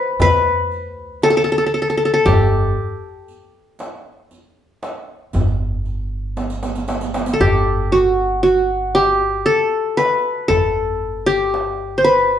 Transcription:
Already playing: B4
0.19 D2 B4, riq, darbuka dum
0.71 riq, darbuka ka
1.22 A4, riq, darbuka tek
1.30 A4
1.37 A4
1.44 A4
1.52 A4
1.58 A4
1.66 A4
1.74 A4, riq
1.82 A4
1.90 A4
1.97 A4
2.05 A4
2.14 A4
2.25 G1 G4, riq, darbuka dum
3.28 riq
3.79 riq, darbuka tek
4.31 riq, darbuka ka
4.83 riq, darbuka tek
5.33 G1, riq, darbuka dum
5.85 riq, darbuka ka
6.37 riq, darbuka tek
6.50 riq
6.63 riq, darbuka ka
6.75 riq
6.88 riq, darbuka tek
7.01 riq
7.14 riq, darbuka ka
7.26 riq
7.33 A4
7.40 G1 G4, darbuka dum
7.92 F#4
8.43 F#4
8.95 G4, darbuka tek
9.46 A4
9.97 B4, darbuka tek
10.48 G1 A4, darbuka dum
11.26 G4
11.54 darbuka tek
11.98 C5
12.04 B4

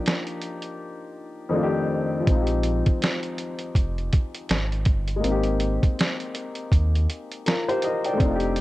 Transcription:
Already playing: F3 A#3 D4 D#4 G4
0.06 snare, closed hi-hat
0.27 closed hi-hat
0.42 closed hi-hat
0.62 closed hi-hat
1.49 F2 D#3 A3
1.54 C4 D4 F4
1.63 G4
2.20 F3 G#3
2.27 A#1 C4 D#4, kick, closed hi-hat
2.35 F4
2.42 G4
2.47 closed hi-hat
2.63 closed hi-hat
2.86 kick, closed hi-hat
3.02 snare, closed hi-hat
3.23 closed hi-hat
3.38 closed hi-hat
3.59 closed hi-hat
3.75 F1, kick, closed hi-hat
3.98 closed hi-hat
4.13 kick, closed hi-hat
4.35 closed hi-hat
4.49 G#1, snare, closed hi-hat
4.72 closed hi-hat
4.85 G1, kick, closed hi-hat
5.08 closed hi-hat
5.16 G#3 A#3
5.24 G#1 C4 D#4, closed hi-hat
5.31 G4
5.43 closed hi-hat
5.60 closed hi-hat
5.83 kick, closed hi-hat
5.99 snare, closed hi-hat
6.20 closed hi-hat
6.35 closed hi-hat
6.55 closed hi-hat
6.72 D#2, kick, closed hi-hat
6.95 closed hi-hat
7.10 closed hi-hat
7.32 closed hi-hat
7.46 F4 A#4, snare, closed hi-hat
7.68 G4 C5, closed hi-hat
7.82 A#4 D#5, closed hi-hat
8.04 D5 G5, closed hi-hat
8.13 A3
8.17 F1 C4 D4, kick, closed hi-hat
8.24 D#4 F4
8.35 G4
8.40 closed hi-hat
8.56 closed hi-hat

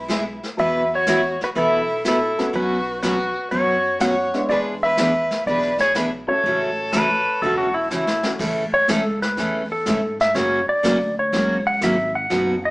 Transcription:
Already playing: B1 E4 B4
0.08 E3 G#3 B3 E4 G#4, snare, hi-hat pedal
0.43 snare
0.57 E2 E3 F#3 B3 E4 F#4 B4 E5, brush sweep, kick
0.94 F#4 C#5
1.07 E3 B3 E4 F#4 B4, snare, hi-hat pedal
1.41 F#4 B4, snare
1.55 B1 E3 B3 E4 F#4 A4 B4, brush sweep, kick
2.05 E3 B3 E4 F#4 A4 B4, snare, hi-hat pedal
2.38 F#3 B3 C#4 F#4, snare
2.53 B1 B2 F#3 B3 C#4 F#4 B4, brush sweep, kick
3.02 B2 F#3 B3 C#4 F#4 B4, snare, hi-hat pedal
3.51 F#2 B2 F#3 B3 C#4 F#4 C#5, brush sweep, kick
4.00 B2 F#3 B3 C#4 F#4 C#5 F#5, snare, hi-hat pedal
4.34 G#3 B3 D4 E4, snare
4.49 E2 E3 B3 D4 G#4 B4 D5, brush sweep, kick
4.83 B4 E5
4.97 E3 B3 D4 G#4, snare, hi-hat pedal
5.31 snare
5.46 B1 E3 B3 D4 G#4 B4 D5, brush sweep, kick
5.62 snare
5.78 G#4 C#5, snare
5.95 E3 B3 D4 E4 G#4 B4, snare, hi-hat pedal
6.27 F#3 A3 C#4 E4 A4 C#5
6.43 A1 C#3 E3 A3 C#4 F#4, brush sweep, kick
6.93 C#3 E3 A3 C#4 F#4 B4, snare, hi-hat pedal
7.42 E1 C#3 E3 F#3 A3 C#4 E4 F#4 A4, brush sweep, kick
7.58 F#4
7.74 E4
7.91 C#3 E3 A3 C#4 E4 F#4, snare, hi-hat pedal
8.07 snare
8.23 E3 A3 C#4 F#4, snare
8.39 A1 C#3 E3 A3 C#4 A4, brush sweep, kick, snare, crash
8.74 C#5
8.88 C#2 C#3 E3 A3 C#4 A4, kick, snare, hi-hat pedal
9.22 B4, snare
9.37 E2 C#3 E3 A3 C#4 A4, brush sweep, kick, snare
9.72 A4
9.86 G#2 C#3 E3 A3 C#4 A4, kick, snare, hi-hat pedal
10.20 E5, snare
10.35 F#2 C#3 F#3 A#3 C#4 F#4 C#5, brush sweep, kick, snare
10.69 D5, muted upright bass stroke
10.83 D2 C#3 F#3 A#3 C#4 F#4, kick, snare, hi-hat pedal
11.19 C#5
11.32 C#2 C#3 F#3 A#3 C#4 F#4, brush sweep, kick, snare
11.67 F#5
11.81 G#1 C#3 F#3 A#3 C#4 F#4 E5, kick, snare, hi-hat pedal
12.15 F#5
12.30 F#1 B2 F#3 B3 D#4 F#4, brush sweep, kick, snare
12.65 D#5

